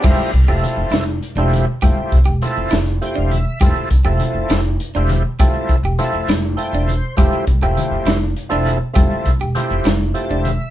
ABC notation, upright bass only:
X:1
M:6/8
L:1/16
Q:3/8=67
K:F
V:1 name="Upright bass" clef=bass
F,,, z C,, E,,, z F,,, F,,,2 z E,,,2 z | F,,, z C,, E,,, z F,,, F,,,2 z E,,,2 z | F,,, z C,, E,,, z F,,, F,,,2 z E,,,2 z | F,,, z C,, E,,, z F,,, F,,,2 z E,,,2 z |
F,,, z C,, E,,, z F,,, F,,,2 z E,,,2 z | F,,, z C,, E,,, z F,,, F,,,2 z E,,,2 z |]